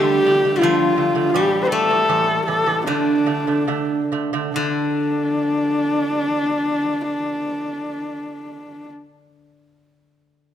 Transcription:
0.00 0.20 D3 loud
0.00 0.55 G3 medium
0.00 0.20 A3 medium
0.00 1.72 A3 medium
0.00 0.60 G4 loud
0.26 0.41 D3 medium
0.26 0.41 A3 medium
0.44 0.59 D3 medium
0.44 0.59 A3 medium
0.56 1.34 G3 medium
0.56 1.31 F4 medium
0.61 0.90 D3 loud
0.61 1.39 F3 medium
0.61 0.91 A3 loud
0.97 1.12 D3 medium
0.97 1.12 A3 medium
1.15 1.30 D3 medium
1.15 1.30 A3 medium
1.30 1.65 G4 loud
1.34 1.64 A2 medium
1.34 1.64 E3 medium
1.34 2.92 G3 medium
1.63 1.70 C5 medium
1.68 1.86 A2 medium
1.68 1.87 E3 medium
1.68 5.05 A3 medium
1.68 2.46 A4 medium
1.90 2.05 A2 medium
1.90 2.06 E3 medium
2.09 2.40 A2 medium
2.09 2.40 E3 loud
2.46 2.63 A2 medium
2.46 2.63 E3 medium
2.46 2.84 A4 medium
2.66 2.83 A2 medium
2.66 2.83 E3 medium
2.86 3.19 D3 medium
2.86 4.55 D3 medium
2.86 3.19 A3 loud
2.86 4.08 D4 medium
3.26 3.43 D3 medium
3.26 3.44 A3 medium
3.47 3.64 D3 medium
3.47 3.65 A3 medium
3.68 4.02 D3 medium
3.68 4.03 A3 medium
4.12 4.29 D3 medium
4.12 4.30 A3 medium
4.33 4.51 D3 medium
4.33 4.51 A3 loud
4.54 9.02 D3 medium
4.54 9.04 D3 medium
4.54 9.05 A3 medium
4.54 8.90 D4 medium

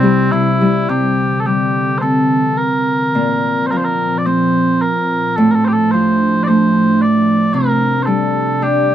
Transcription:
0.00 0.32 C3 medium
0.00 0.85 C3 medium
0.00 0.85 G3 medium
0.00 0.60 G3 soft
0.00 0.31 C4 soft
0.00 0.84 E4 medium
0.31 0.88 C3 soft
0.31 0.89 E4 medium
0.61 0.93 G3 soft
0.88 3.18 C3 soft
0.88 3.11 D3 medium
0.88 3.11 E3 medium
0.88 3.11 C4 medium
0.88 1.40 G4 medium
1.40 1.46 A4 soft
1.46 3.18 G3 soft
1.46 1.98 G4 medium
1.98 2.58 A4 medium
1.98 2.02 C5 medium
2.02 4.26 C4 soft
2.58 3.67 A#4 medium
3.15 5.41 A#2 soft
3.15 5.35 A#2 medium
3.15 5.35 F3 medium
3.15 5.35 C4 medium
3.67 3.71 C5 medium
3.71 5.41 F3 soft
3.71 3.77 A#4 medium
3.77 3.85 C5 medium
3.85 4.18 A#4 medium
4.18 4.26 D5 soft
4.26 7.26 C4 soft
4.26 4.82 C5 medium
4.82 5.36 A#4 medium
5.36 7.58 A2 soft
5.36 7.52 F3 medium
5.36 7.52 A3 medium
5.36 5.51 A4 medium
5.40 7.52 A2 medium
5.40 8.95 D4 medium
5.51 5.65 A4 medium
5.51 5.55 A#4 soft
5.65 5.73 G4 medium
5.65 5.68 C5 medium
5.73 5.91 A4 medium
5.91 7.58 F3 soft
5.91 6.43 C5 medium
6.43 6.47 D5 medium
6.47 8.95 A3 soft
6.47 7.02 C5 medium
7.02 7.53 D5 medium
7.53 8.95 C3 soft
7.53 8.95 C3 medium
7.53 8.95 G3 medium
7.53 8.03 A#4 medium
8.03 8.63 A4 medium
8.03 8.06 C5 medium
8.07 8.95 G3 soft
8.62 8.95 D4 soft
8.62 8.95 G4 medium

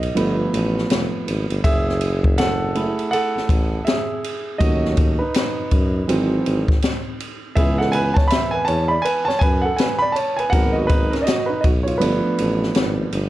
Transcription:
0.00 0.35 D#5 medium
0.00 ride medium
0.15 0.46 G1 loud
0.15 1.60 F3 medium
0.15 1.60 A3 medium
0.15 1.60 B3 medium
0.15 ride medium
0.53 0.83 A1 loud
0.53 ride medium
0.78 snare soft
0.90 1.09 F1 medium
0.90 snare loud
0.90 hi-hat pedal soft
0.90 ride medium
1.27 1.46 G#1 medium
1.27 ride medium
1.50 1.61 G1 medium
1.50 ride soft
1.64 2.94 F#1 loud
1.64 2.35 G#4 medium
1.64 2.40 E5 loud
1.64 kick loud
1.64 ride medium
1.89 snare soft
2.01 ride medium
2.24 kick medium
2.38 3.09 A4 medium
2.38 3.10 F#5 loud
2.38 snare loud
2.38 hi-hat pedal medium
2.38 ride medium
2.75 3.82 A3 medium
2.75 3.83 E4 medium
2.75 3.82 G#4 medium
2.75 ride medium
2.99 ride soft
3.11 3.83 A4 medium
3.11 3.82 F#5 medium
3.11 ride medium
3.35 3.41 A1 soft
3.35 snare soft
3.49 3.80 A1 medium
3.49 kick loud
3.49 ride medium
3.85 4.57 G#4 medium
3.85 4.62 E5 medium
3.85 snare loud
3.85 hi-hat pedal soft
3.85 ride medium
4.24 ride medium
4.58 5.22 D#2 loud
4.58 5.12 F#3 medium
4.58 5.13 A3 medium
4.58 5.13 C#4 medium
4.58 5.17 F#4 medium
4.58 5.21 D#5 medium
4.58 kick loud
4.58 ride medium
4.85 snare soft
4.97 kick loud
4.97 ride medium
5.19 7.16 D#4 medium
5.19 7.15 B4 medium
5.34 snare loud
5.34 hi-hat pedal medium
5.34 ride medium
5.57 5.63 F#2 soft
5.71 6.02 F#2 medium
5.71 kick medium
5.71 ride medium
6.08 6.39 G#1 loud
6.08 6.61 E3 medium
6.08 6.61 F#3 medium
6.08 6.61 C4 medium
6.08 ride medium
6.46 6.76 G#1 medium
6.46 ride medium
6.68 kick loud
6.68 snare soft
6.82 snare loud
6.82 hi-hat pedal soft
6.82 ride medium
7.20 ride medium
7.55 8.18 C#2 loud
7.55 10.49 E3 medium
7.55 10.49 G#3 medium
7.55 10.49 B3 medium
7.55 7.79 G#4 medium
7.55 7.80 E5 loud
7.55 kick loud
7.55 ride medium
7.78 7.93 A4 medium
7.78 7.92 F#5 medium
7.78 snare soft
7.92 8.16 B4 medium
7.92 8.14 G#5 loud
7.92 ride medium
8.14 8.30 C#5 medium
8.14 8.30 A5 medium
8.14 kick medium
8.14 snare soft
8.28 8.52 E5 medium
8.28 8.51 B5 loud
8.28 hi-hat pedal medium
8.28 ride medium
8.32 snare loud
8.51 8.59 E2 soft
8.51 8.67 B4 medium
8.51 8.65 G#5 medium
8.65 8.98 E2 medium
8.65 8.89 C#5 medium
8.65 8.88 A5 loud
8.65 ride medium
8.88 9.04 D5 medium
8.88 9.04 B5 medium
9.02 9.26 B4 medium
9.02 9.25 G#5 loud
9.02 ride medium
9.25 9.33 F#2 soft
9.25 9.41 C#5 medium
9.25 9.39 A5 loud
9.29 snare soft
9.39 9.72 F#2 medium
9.39 9.64 B4 medium
9.39 9.62 G#5 loud
9.39 kick loud
9.39 ride medium
9.62 9.78 A4 medium
9.62 9.78 F#5 medium
9.77 10.01 B4 medium
9.77 9.99 G#5 medium
9.77 snare loud
9.77 hi-hat pedal soft
9.77 ride medium
9.99 10.15 D5 medium
9.99 10.15 B5 loud
10.12 10.37 C#5 medium
10.12 10.38 A5 medium
10.12 ride medium
10.37 10.52 B4 medium
10.37 10.52 G#5 medium
10.37 ride soft
10.50 11.14 G#1 loud
10.50 11.05 F#3 medium
10.50 11.05 A#3 medium
10.50 11.06 B3 medium
10.50 10.74 A#4 medium
10.50 10.75 F#5 loud
10.50 kick loud
10.50 ride medium
10.73 10.89 F#4 medium
10.73 10.89 D#5 medium
10.87 11.12 D#4 medium
10.87 11.12 B4 medium
10.87 kick loud
10.87 ride medium
11.10 11.23 C#4 medium
11.10 11.22 A#4 medium
11.10 ride soft
11.14 snare soft
11.21 11.26 D5 medium
11.21 11.47 D#5 medium
11.27 11.48 F#4 medium
11.27 snare loud
11.27 hi-hat pedal medium
11.27 ride medium
11.46 11.55 B1 soft
11.46 11.63 D#4 medium
11.46 11.63 B4 medium
11.61 11.95 B1 medium
11.61 11.69 F#4 medium
11.61 11.66 D#5 medium
11.61 kick medium
11.61 ride medium
11.83 12.00 F4 medium
11.83 12.00 C#5 medium
11.87 ride soft
11.98 12.20 G1 loud
11.98 13.29 F3 medium
11.98 13.29 A3 medium
11.98 13.29 B3 medium
11.98 13.08 D4 medium
11.98 13.07 B4 medium
11.98 ride medium
12.24 12.30 A1 soft
12.38 12.69 A1 medium
12.38 ride medium
12.63 snare soft
12.75 13.06 G#1 medium
12.75 snare loud
12.75 hi-hat pedal soft
12.75 ride medium
13.12 13.29 G1 loud
13.12 ride medium

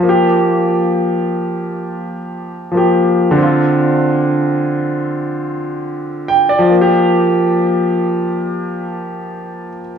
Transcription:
0.00 2.67 F3 medium
0.00 2.70 A#3 medium
0.09 2.73 G4 medium
2.71 3.35 F3 medium
2.71 3.37 A#3 medium
2.77 3.38 G4 medium
3.31 6.63 D3 medium
3.37 6.66 C4 medium
3.42 6.69 F4 medium
6.28 6.48 G5 medium
6.49 6.69 D5 medium
6.59 9.68 F3 medium
6.70 9.80 A#3 medium
6.81 9.91 G4 medium

